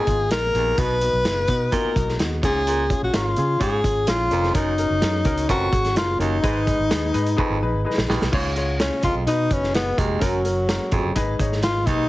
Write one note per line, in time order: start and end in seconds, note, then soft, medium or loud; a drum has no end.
0.00 0.31 G#4 loud
0.07 0.27 G#1 medium
0.07 0.25 B3 medium
0.07 0.25 D#4 medium
0.07 0.26 F4 medium
0.07 kick medium
0.07 closed hi-hat medium
0.30 0.50 A#1 medium
0.30 0.48 B3 medium
0.30 0.49 D#4 medium
0.30 0.49 G#4 medium
0.30 0.80 A#4 loud
0.30 snare loud
0.30 closed hi-hat medium
0.54 0.74 A#1 medium
0.54 0.73 D#2 medium
0.54 0.72 B3 medium
0.54 0.73 D#4 medium
0.54 0.73 G#4 medium
0.54 closed hi-hat medium
0.77 1.08 B1 medium
0.77 0.97 B2 medium
0.77 1.45 B2 medium
0.77 0.96 B3 loud
0.77 0.96 D#4 medium
0.77 0.96 F#4 loud
0.77 1.74 B4 loud
0.77 kick loud
0.77 closed hi-hat medium
1.01 1.19 B3 medium
1.01 1.20 D#4 medium
1.01 1.20 F#4 medium
1.01 closed hi-hat medium
1.13 1.23 B1 medium
1.24 1.45 F#1 medium
1.24 1.43 B3 medium
1.24 1.43 D#4 medium
1.24 1.43 F4 medium
1.24 snare loud
1.24 closed hi-hat medium
1.47 1.68 B2 medium
1.47 1.66 B3 medium
1.47 1.66 D#4 medium
1.47 1.67 F#4 medium
1.47 kick medium
1.47 closed hi-hat medium
1.71 1.91 A#2 medium
1.71 1.90 B3 medium
1.71 1.90 D#4 medium
1.71 1.90 F#4 medium
1.71 2.16 A#4 medium
1.71 kick medium
1.71 closed hi-hat medium
1.84 muted fingered electric bass stroke soft
1.95 2.16 B1 medium
1.95 2.13 B3 medium
1.95 2.14 D#4 medium
1.95 2.14 F#4 medium
1.95 kick medium
1.95 closed hi-hat medium
2.09 snare soft
2.19 2.39 D#2 medium
2.19 2.37 B3 medium
2.19 2.38 D#4 medium
2.19 2.38 F#4 medium
2.19 snare loud
2.19 closed hi-hat medium
2.43 2.93 C#2 medium
2.43 2.62 G#2 medium
2.43 3.10 C#3 medium
2.43 2.81 C#4 medium
2.43 2.81 F4 medium
2.43 2.81 G#4 medium
2.43 2.99 G#4 loud
2.43 kick loud
2.43 closed hi-hat medium
2.67 2.86 A#2 medium
2.67 closed hi-hat medium
2.90 3.08 C#4 medium
2.90 3.08 F4 medium
2.90 3.08 G#4 medium
2.90 kick medium
2.90 closed hi-hat medium
3.02 3.12 A#1 medium
3.02 3.18 F#4 medium
3.13 3.34 G#1 medium
3.13 3.31 C#4 medium
3.13 3.32 F4 medium
3.13 3.62 F4 medium
3.13 3.32 A#4 medium
3.13 snare loud
3.13 closed hi-hat medium
3.36 3.58 C#3 loud
3.36 3.55 C#4 medium
3.36 3.55 F4 medium
3.36 3.55 G#4 medium
3.36 closed hi-hat medium
3.60 3.79 G#2 medium
3.60 3.81 G#2 medium
3.60 3.78 C#4 loud
3.60 3.78 F4 medium
3.60 3.79 G#4 loud
3.60 4.05 G#4 loud
3.60 kick medium
3.60 closed hi-hat medium
3.83 4.04 G#1 medium
3.83 4.02 C#4 medium
3.83 4.02 F4 medium
3.83 4.02 G#4 medium
3.83 kick medium
3.83 closed hi-hat medium
4.07 4.27 A#1 medium
4.07 4.25 C#4 medium
4.07 4.25 F4 medium
4.07 4.53 F4 loud
4.07 4.26 G#4 medium
4.07 snare loud
4.07 closed hi-hat medium
4.30 4.51 F1 medium
4.30 4.50 F2 medium
4.30 4.49 C#4 medium
4.30 4.49 F4 medium
4.30 4.50 A#4 medium
4.30 closed hi-hat medium
4.43 snare soft
4.54 4.85 F#1 loud
4.54 4.74 F#2 medium
4.54 4.72 C#4 loud
4.54 5.46 D#4 medium
4.54 4.72 F#4 medium
4.54 4.73 A#4 loud
4.54 kick loud
4.54 closed hi-hat medium
4.78 4.96 C#4 medium
4.78 4.96 F#4 medium
4.78 4.97 A#4 medium
4.78 closed hi-hat medium
4.90 5.00 F#1 medium
5.01 5.22 F#2 medium
5.01 5.19 C#4 medium
5.01 5.20 F#4 medium
5.01 5.20 A#4 medium
5.01 snare loud
5.01 closed hi-hat medium
5.25 5.45 C#2 medium
5.25 5.43 C#4 medium
5.25 5.43 F#4 medium
5.25 5.44 A#4 loud
5.25 kick medium
5.25 closed hi-hat medium
5.37 closed hi-hat medium
5.48 5.69 F#1 medium
5.48 5.68 F2 medium
5.48 5.67 C#4 medium
5.48 5.67 F#4 medium
5.48 5.94 F#4 medium
5.48 5.67 A#4 loud
5.48 kick medium
5.48 closed hi-hat medium
5.71 5.96 G#1 medium
5.71 5.90 C#4 medium
5.71 5.90 F#4 medium
5.71 5.91 G#4 medium
5.71 kick loud
5.71 closed hi-hat medium
5.85 snare soft
5.85 closed hi-hat soft
5.95 6.16 F#1 medium
5.95 6.13 C#4 medium
5.95 6.19 F4 loud
5.95 6.14 F#4 medium
5.95 6.14 A#4 medium
5.95 snare loud
5.95 closed hi-hat medium
6.18 6.40 F#1 medium
6.18 6.39 D#2 medium
6.18 6.37 C#4 medium
6.18 7.82 D#4 medium
6.18 6.37 F#4 medium
6.18 6.38 A#4 medium
6.18 closed hi-hat medium
6.42 6.73 G#1 loud
6.42 7.10 G#2 medium
6.42 6.63 G#2 medium
6.42 6.77 G#3 medium
6.42 6.61 D#4 loud
6.42 6.77 D#4 medium
6.42 6.61 G#4 medium
6.42 6.77 B4 loud
6.42 6.61 B4 loud
6.42 kick loud
6.42 closed hi-hat medium
6.65 6.84 D#4 medium
6.65 6.85 G#4 medium
6.65 6.85 B4 medium
6.65 kick medium
6.65 closed hi-hat medium
6.78 6.89 G#1 medium
6.89 7.11 D#2 medium
6.89 7.08 D#4 medium
6.89 7.08 G#4 medium
6.89 7.09 B4 medium
6.89 snare loud
6.89 closed hi-hat medium
7.13 7.34 G#2 medium
7.13 7.31 D#4 medium
7.13 7.32 G#4 medium
7.13 7.32 B4 loud
7.13 closed hi-hat medium
7.26 closed hi-hat medium
7.37 7.57 F2 loud
7.37 7.55 D#4 loud
7.37 7.56 G#4 loud
7.37 7.56 B4 loud
7.37 kick medium
7.50 7.60 G#1 medium
7.61 7.72 A#1 medium
7.61 7.79 D#4 medium
7.61 7.80 G#4 medium
7.61 7.80 B4 loud
7.74 7.84 G#1 medium
7.85 8.03 D#4 medium
7.85 8.03 G#4 medium
7.85 8.04 B4 medium
7.98 8.07 A#1 medium
7.98 snare medium
8.08 8.19 A#1 medium
8.08 8.28 D#2 medium
8.08 8.26 D#4 medium
8.08 8.27 G#4 medium
8.08 8.27 B4 loud
8.08 snare medium
8.22 8.31 B1 medium
8.22 snare medium
8.32 8.89 C#2 loud
8.32 8.52 G#2 medium
8.32 8.99 C#3 medium
8.32 8.50 F4 loud
8.32 8.50 G#4 loud
8.32 8.51 C#5 loud
8.32 kick loud
8.32 crash medium
8.56 8.74 F4 medium
8.56 8.74 G#4 medium
8.56 8.75 C#5 medium
8.56 closed hi-hat medium
8.80 9.02 C#4 medium
8.80 8.97 F4 medium
8.80 8.98 G#4 medium
8.80 8.98 C#5 medium
8.80 snare loud
8.80 closed hi-hat medium
9.03 9.13 C#2 medium
9.03 9.22 F2 medium
9.03 9.21 F4 medium
9.03 9.15 F4 medium
9.03 9.22 G#4 medium
9.03 9.22 D#5 medium
9.03 kick medium
9.03 closed hi-hat medium
9.15 9.25 B1 medium
9.26 9.46 B2 medium
9.26 9.94 B2 medium
9.26 9.45 D#4 loud
9.26 9.54 D#4 loud
9.26 9.45 F#4 medium
9.26 9.45 B4 loud
9.26 closed hi-hat medium
9.51 9.90 F#1 medium
9.51 9.75 C#4 medium
9.51 9.68 D#4 medium
9.51 9.69 F#4 medium
9.51 9.69 B4 medium
9.51 kick loud
9.51 closed hi-hat medium
9.63 snare soft
9.74 10.00 B3 loud
9.74 9.92 D#4 medium
9.74 9.92 F#4 medium
9.74 9.93 B4 medium
9.74 snare loud
9.74 closed hi-hat medium
9.97 10.18 F1 medium
9.97 10.17 D#2 medium
9.97 10.22 G#3 medium
9.97 10.15 D#4 medium
9.97 10.16 F#4 medium
9.97 10.16 A#4 medium
9.97 kick medium
9.97 closed hi-hat medium
10.20 10.78 F#1 medium
10.20 10.40 F#2 medium
10.20 11.36 F#3 medium
10.20 10.39 C#4 loud
10.20 10.39 F#4 medium
10.20 10.39 A#4 loud
10.20 kick loud
10.20 closed hi-hat medium
10.44 10.62 C#4 medium
10.44 10.63 F#4 medium
10.44 10.63 A#4 medium
10.44 closed hi-hat medium
10.68 10.86 C#4 medium
10.68 10.86 F#4 medium
10.68 10.87 A#4 medium
10.68 snare loud
10.68 closed hi-hat medium
10.92 11.02 G#1 medium
10.92 11.11 F2 medium
10.92 11.10 C#4 medium
10.92 11.10 F#4 medium
10.92 11.11 G#4 medium
10.92 kick medium
10.92 closed hi-hat medium
11.04 11.14 F#1 medium
11.15 11.36 G#1 loud
11.15 11.83 G#2 medium
11.15 11.34 D#4 loud
11.15 11.34 G#4 loud
11.15 11.34 B4 loud
11.15 kick medium
11.15 closed hi-hat medium
11.39 11.87 G#1 medium
11.39 11.57 D#4 medium
11.39 11.58 G#4 medium
11.39 11.58 C#5 medium
11.39 kick loud
11.39 closed hi-hat medium
11.52 snare soft
11.62 11.81 D#4 medium
11.62 11.88 F4 loud
11.62 11.81 G#4 medium
11.62 11.81 B4 medium
11.62 snare loud
11.62 closed hi-hat medium
11.86 12.07 B1 medium
11.86 12.06 D#2 medium
11.86 12.04 D#4 medium
11.86 12.09 D#4 loud
11.86 12.05 G#4 medium
11.86 12.05 B4 medium
11.86 kick medium
11.86 closed hi-hat medium